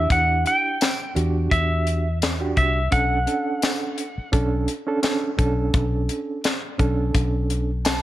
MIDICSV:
0, 0, Header, 1, 6, 480
1, 0, Start_track
1, 0, Key_signature, 2, "minor"
1, 0, Tempo, 705053
1, 66, Time_signature, 4, 2, 24, 8
1, 5460, End_track
2, 0, Start_track
2, 0, Title_t, "Electric slide guitar"
2, 0, Program_c, 0, 29
2, 0, Note_on_c, 0, 76, 91
2, 79, Note_off_c, 0, 76, 0
2, 81, Note_on_c, 0, 78, 107
2, 319, Note_off_c, 0, 78, 0
2, 322, Note_on_c, 0, 79, 90
2, 768, Note_off_c, 0, 79, 0
2, 1031, Note_on_c, 0, 76, 101
2, 1483, Note_off_c, 0, 76, 0
2, 1752, Note_on_c, 0, 76, 91
2, 1989, Note_on_c, 0, 78, 105
2, 1998, Note_off_c, 0, 76, 0
2, 2921, Note_off_c, 0, 78, 0
2, 5460, End_track
3, 0, Start_track
3, 0, Title_t, "Reed electric piano"
3, 0, Program_c, 1, 4
3, 0, Note_on_c, 1, 62, 72
3, 0, Note_on_c, 1, 64, 63
3, 0, Note_on_c, 1, 67, 72
3, 521, Note_off_c, 1, 62, 0
3, 523, Note_off_c, 1, 64, 0
3, 525, Note_off_c, 1, 67, 0
3, 783, Note_on_c, 1, 62, 64
3, 787, Note_on_c, 1, 66, 62
3, 791, Note_on_c, 1, 67, 69
3, 1405, Note_off_c, 1, 62, 0
3, 1407, Note_off_c, 1, 66, 0
3, 1409, Note_off_c, 1, 67, 0
3, 1637, Note_on_c, 1, 62, 69
3, 1640, Note_on_c, 1, 66, 64
3, 1645, Note_on_c, 1, 67, 80
3, 1897, Note_off_c, 1, 62, 0
3, 1899, Note_off_c, 1, 66, 0
3, 1901, Note_off_c, 1, 67, 0
3, 1982, Note_on_c, 1, 61, 72
3, 1985, Note_on_c, 1, 62, 65
3, 1990, Note_on_c, 1, 69, 79
3, 2165, Note_off_c, 1, 61, 0
3, 2167, Note_off_c, 1, 62, 0
3, 2170, Note_off_c, 1, 69, 0
3, 2221, Note_on_c, 1, 61, 62
3, 2227, Note_on_c, 1, 62, 63
3, 2229, Note_on_c, 1, 69, 70
3, 2750, Note_off_c, 1, 61, 0
3, 2752, Note_off_c, 1, 62, 0
3, 2753, Note_off_c, 1, 69, 0
3, 2942, Note_on_c, 1, 61, 79
3, 2947, Note_on_c, 1, 62, 82
3, 2950, Note_on_c, 1, 69, 86
3, 3207, Note_off_c, 1, 61, 0
3, 3210, Note_off_c, 1, 62, 0
3, 3211, Note_off_c, 1, 69, 0
3, 3313, Note_on_c, 1, 61, 78
3, 3319, Note_on_c, 1, 62, 76
3, 3323, Note_on_c, 1, 69, 91
3, 3395, Note_off_c, 1, 61, 0
3, 3397, Note_off_c, 1, 62, 0
3, 3400, Note_off_c, 1, 69, 0
3, 3423, Note_on_c, 1, 61, 82
3, 3427, Note_on_c, 1, 62, 73
3, 3430, Note_on_c, 1, 69, 88
3, 3605, Note_off_c, 1, 61, 0
3, 3607, Note_off_c, 1, 62, 0
3, 3609, Note_off_c, 1, 69, 0
3, 3660, Note_on_c, 1, 61, 76
3, 3664, Note_on_c, 1, 62, 73
3, 3668, Note_on_c, 1, 69, 94
3, 4359, Note_off_c, 1, 61, 0
3, 4361, Note_off_c, 1, 62, 0
3, 4363, Note_off_c, 1, 69, 0
3, 4620, Note_on_c, 1, 61, 73
3, 4624, Note_on_c, 1, 62, 71
3, 4629, Note_on_c, 1, 69, 82
3, 5240, Note_off_c, 1, 61, 0
3, 5242, Note_off_c, 1, 62, 0
3, 5244, Note_off_c, 1, 69, 0
3, 5344, Note_on_c, 1, 81, 68
3, 5460, Note_off_c, 1, 81, 0
3, 5460, End_track
4, 0, Start_track
4, 0, Title_t, "Fingered electric bass"
4, 0, Program_c, 2, 33
4, 72, Note_on_c, 2, 40, 90
4, 293, Note_off_c, 2, 40, 0
4, 791, Note_on_c, 2, 40, 77
4, 1014, Note_off_c, 2, 40, 0
4, 1032, Note_on_c, 2, 40, 84
4, 1724, Note_off_c, 2, 40, 0
4, 1751, Note_on_c, 2, 36, 94
4, 1974, Note_off_c, 2, 36, 0
4, 1991, Note_on_c, 2, 35, 86
4, 2214, Note_off_c, 2, 35, 0
4, 2950, Note_on_c, 2, 35, 78
4, 3173, Note_off_c, 2, 35, 0
4, 3669, Note_on_c, 2, 35, 95
4, 3891, Note_off_c, 2, 35, 0
4, 3910, Note_on_c, 2, 35, 97
4, 4132, Note_off_c, 2, 35, 0
4, 4627, Note_on_c, 2, 35, 79
4, 4849, Note_off_c, 2, 35, 0
4, 4867, Note_on_c, 2, 35, 80
4, 5460, Note_off_c, 2, 35, 0
4, 5460, End_track
5, 0, Start_track
5, 0, Title_t, "Muted fingered electric bass strokes"
5, 2845, Note_on_c, 9, 29, 38
5, 2913, Note_off_c, 9, 29, 0
5, 5460, End_track
6, 0, Start_track
6, 0, Title_t, "Drums"
6, 70, Note_on_c, 9, 36, 101
6, 70, Note_on_c, 9, 42, 84
6, 138, Note_off_c, 9, 36, 0
6, 138, Note_off_c, 9, 42, 0
6, 312, Note_on_c, 9, 42, 58
6, 380, Note_off_c, 9, 42, 0
6, 552, Note_on_c, 9, 42, 78
6, 552, Note_on_c, 9, 54, 111
6, 559, Note_on_c, 9, 38, 100
6, 620, Note_off_c, 9, 42, 0
6, 620, Note_off_c, 9, 54, 0
6, 627, Note_off_c, 9, 38, 0
6, 792, Note_on_c, 9, 42, 51
6, 860, Note_off_c, 9, 42, 0
6, 1031, Note_on_c, 9, 36, 86
6, 1033, Note_on_c, 9, 42, 86
6, 1099, Note_off_c, 9, 36, 0
6, 1101, Note_off_c, 9, 42, 0
6, 1272, Note_on_c, 9, 42, 52
6, 1340, Note_off_c, 9, 42, 0
6, 1512, Note_on_c, 9, 42, 79
6, 1512, Note_on_c, 9, 54, 117
6, 1519, Note_on_c, 9, 38, 108
6, 1580, Note_off_c, 9, 42, 0
6, 1580, Note_off_c, 9, 54, 0
6, 1588, Note_off_c, 9, 38, 0
6, 1749, Note_on_c, 9, 42, 56
6, 1750, Note_on_c, 9, 36, 78
6, 1817, Note_off_c, 9, 42, 0
6, 1818, Note_off_c, 9, 36, 0
6, 1987, Note_on_c, 9, 42, 77
6, 1989, Note_on_c, 9, 36, 100
6, 2055, Note_off_c, 9, 42, 0
6, 2058, Note_off_c, 9, 36, 0
6, 2227, Note_on_c, 9, 42, 58
6, 2296, Note_off_c, 9, 42, 0
6, 2467, Note_on_c, 9, 42, 78
6, 2467, Note_on_c, 9, 54, 111
6, 2474, Note_on_c, 9, 38, 99
6, 2535, Note_off_c, 9, 42, 0
6, 2535, Note_off_c, 9, 54, 0
6, 2542, Note_off_c, 9, 38, 0
6, 2708, Note_on_c, 9, 42, 53
6, 2776, Note_off_c, 9, 42, 0
6, 2947, Note_on_c, 9, 42, 73
6, 2948, Note_on_c, 9, 36, 84
6, 3015, Note_off_c, 9, 42, 0
6, 3016, Note_off_c, 9, 36, 0
6, 3186, Note_on_c, 9, 42, 57
6, 3254, Note_off_c, 9, 42, 0
6, 3425, Note_on_c, 9, 42, 81
6, 3425, Note_on_c, 9, 54, 100
6, 3432, Note_on_c, 9, 38, 106
6, 3493, Note_off_c, 9, 42, 0
6, 3493, Note_off_c, 9, 54, 0
6, 3500, Note_off_c, 9, 38, 0
6, 3667, Note_on_c, 9, 36, 78
6, 3667, Note_on_c, 9, 42, 66
6, 3735, Note_off_c, 9, 42, 0
6, 3736, Note_off_c, 9, 36, 0
6, 3906, Note_on_c, 9, 42, 80
6, 3908, Note_on_c, 9, 36, 114
6, 3974, Note_off_c, 9, 42, 0
6, 3976, Note_off_c, 9, 36, 0
6, 4147, Note_on_c, 9, 42, 60
6, 4215, Note_off_c, 9, 42, 0
6, 4385, Note_on_c, 9, 42, 81
6, 4385, Note_on_c, 9, 54, 102
6, 4393, Note_on_c, 9, 38, 97
6, 4453, Note_off_c, 9, 42, 0
6, 4453, Note_off_c, 9, 54, 0
6, 4461, Note_off_c, 9, 38, 0
6, 4625, Note_on_c, 9, 42, 56
6, 4626, Note_on_c, 9, 36, 73
6, 4693, Note_off_c, 9, 42, 0
6, 4694, Note_off_c, 9, 36, 0
6, 4864, Note_on_c, 9, 42, 87
6, 4865, Note_on_c, 9, 36, 80
6, 4932, Note_off_c, 9, 42, 0
6, 4933, Note_off_c, 9, 36, 0
6, 5106, Note_on_c, 9, 42, 58
6, 5174, Note_off_c, 9, 42, 0
6, 5344, Note_on_c, 9, 42, 83
6, 5344, Note_on_c, 9, 54, 99
6, 5352, Note_on_c, 9, 38, 106
6, 5412, Note_off_c, 9, 42, 0
6, 5412, Note_off_c, 9, 54, 0
6, 5420, Note_off_c, 9, 38, 0
6, 5460, End_track
0, 0, End_of_file